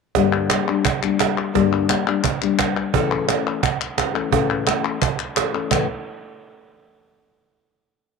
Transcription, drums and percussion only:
0.15 cajon bass loud
0.15 cajon slap soft
0.50 cajon slap loud
0.50 clap loud
0.68 clap soft
0.85 cajon bass loud
0.85 clap medium
1.03 clap medium
1.20 cajon slap loud
1.20 clap medium
1.55 cajon bass loud
1.55 cajon slap soft
1.73 clap medium
1.90 cajon slap medium
1.90 clap loud
2.24 cajon bass loud
2.24 clap medium
2.42 clap medium
2.59 cajon bass medium
2.59 cajon slap loud
2.59 clap medium
2.77 clap soft
2.94 cajon bass loud
3.11 clap medium
3.29 cajon slap loud
3.29 clap medium
3.47 cajon slap soft
3.63 cajon bass loud
3.63 clap loud
3.81 clap medium
3.98 cajon bass medium
3.98 cajon slap loud
3.98 clap medium
4.16 clap medium
4.32 cajon bass loud
4.50 clap soft
4.67 cajon slap loud
4.67 clap medium
4.85 cajon slap soft
4.85 clap medium
5.02 cajon bass loud
5.02 clap medium
5.19 clap medium
5.36 cajon slap loud
5.36 clap medium
5.71 cajon bass loud
5.71 clap loud

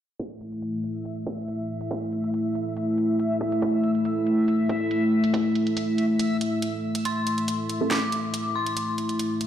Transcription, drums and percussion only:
0.19 kick loud
0.19 closed hi-hat medium
0.41 closed hi-hat medium
0.52 closed hi-hat soft
0.62 closed hi-hat medium
0.84 closed hi-hat medium
1.05 closed hi-hat medium
1.27 kick medium
1.27 closed hi-hat medium
1.48 closed hi-hat medium
1.81 closed hi-hat medium
1.91 kick loud
1.91 closed hi-hat medium
2.12 closed hi-hat soft
2.24 closed hi-hat soft
2.34 closed hi-hat medium
2.55 closed hi-hat soft
2.77 closed hi-hat medium
2.98 closed hi-hat medium
3.19 closed hi-hat medium
3.41 kick medium
3.52 closed hi-hat medium
3.62 kick loud
3.62 closed hi-hat medium
3.84 closed hi-hat soft
3.95 closed hi-hat soft
4.05 closed hi-hat medium
4.27 closed hi-hat soft
4.48 closed hi-hat medium
4.69 kick loud
4.69 closed hi-hat soft
4.91 closed hi-hat medium
5.24 closed hi-hat medium
5.34 kick loud
5.34 closed hi-hat medium
5.55 closed hi-hat soft
5.67 closed hi-hat soft
5.77 closed hi-hat medium
5.98 closed hi-hat soft
6.19 closed hi-hat medium
6.41 closed hi-hat soft
6.62 closed hi-hat medium
6.95 closed hi-hat medium
7.05 closed hi-hat medium
7.27 closed hi-hat medium
7.38 closed hi-hat soft
7.48 closed hi-hat medium
7.69 closed hi-hat medium
7.91 snare loud
7.91 closed hi-hat medium
8.12 closed hi-hat medium
8.34 closed hi-hat medium
8.66 closed hi-hat medium
8.77 closed hi-hat medium
8.98 closed hi-hat medium
9.09 closed hi-hat soft
9.19 closed hi-hat medium
9.41 closed hi-hat medium

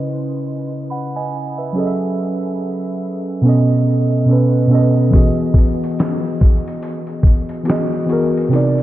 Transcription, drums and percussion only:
5.13 kick loud
5.13 closed hi-hat medium
5.54 kick medium
5.58 closed hi-hat medium
5.84 closed hi-hat soft
5.99 snare medium
5.99 closed hi-hat medium
6.41 kick medium
6.41 closed hi-hat medium
6.68 closed hi-hat soft
6.83 closed hi-hat medium
7.07 closed hi-hat soft
7.23 kick medium
7.23 closed hi-hat medium
7.49 closed hi-hat soft
7.65 closed hi-hat medium
7.70 snare loud
8.09 closed hi-hat soft
8.37 closed hi-hat soft
8.53 closed hi-hat medium
8.78 closed hi-hat soft

